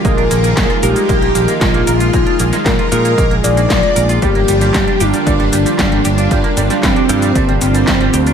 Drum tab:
HH |xxxxxxxxxxxxxxxx|xxxxxxxxxxxxxxxx|xxxxxxxxxxxxxxxx|xxxxxxxxxxxxxxxx|
SH |x-xxx-xxx-xxx-xx|x-xxx-xxx-xxx-xx|x-xxx-xxx-xxx-xx|x-xxx-xxx-xxx-xx|
CP |----x-------x---|----x-------x---|----x-------x---|----x-------x---|
SD |----o-------o---|---oo-------o---|----o-------o---|---oo-------o---|
BD |o---o---o---o---|o---o---o---o---|o---o---o---o---|o---o---o---o---|